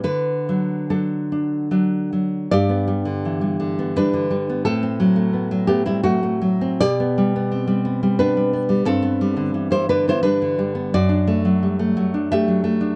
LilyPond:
\new Staff \with { instrumentName = "Nylon-string guitar" } { \time 3/4 \key g \major \tempo 4 = 86 << { b'4 a'4. r8 | <g' d''>2 <d' b'>4 | <c' a'>4. <b g'>16 <g e'>16 <a fis'>4 | <g' d''>2 <d' b'>4 |
<c' a'>4~ <c' a'>16 <e' c''>16 <d' b'>16 <e' c''>16 <d' b'>4 | <fis' d''>2 <g' e''>4 | } \\ { d8 fis8 <fis d'>8 d'8 <fis d'>8 fis8 | g,16 b16 g16 d16 e16 g16 d16 b16 g16 d16 g16 b16 | a,16 c'16 fis16 a16 b16 fis16 a16 c'16 fis16 a16 fis16 c'16 | b,16 b16 g16 b16 c'16 g16 b16 g16 b16 g16 b16 g16 |
g,16 b16 g16 d16 e16 g16 d16 b16 g16 d16 g16 b16 | fis,16 d'16 a16 fis16 g16 a16 fis16 d'16 a16 fis16 a16 d'16 | } >> }